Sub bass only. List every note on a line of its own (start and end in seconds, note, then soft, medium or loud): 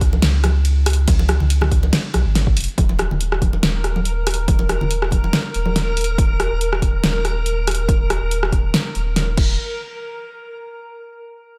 0.01 0.21 C#2 loud
0.23 1.06 C#2 medium
1.08 1.39 C#2 loud
1.40 1.70 C#2 medium
1.71 1.91 C#2 loud
2.14 2.25 B1 medium
2.26 2.55 G#1 loud
2.57 2.67 F1 medium
2.78 3.09 D#1 loud
3.11 3.40 D#1 medium
3.42 3.61 D#1 loud
3.63 4.47 D#1 medium
4.48 4.79 D#1 loud
4.81 5.11 D#1 medium
5.12 5.32 D#1 loud
5.54 6.17 D#1 medium
6.18 6.50 D#1 loud
6.51 6.81 D#1 medium
6.82 7.02 D#1 loud
7.03 7.87 D#1 medium
7.88 8.20 D#1 loud
8.21 8.51 D#1 medium
8.52 8.72 D#1 loud
8.95 9.37 D#1 medium
9.37 9.57 D#1 medium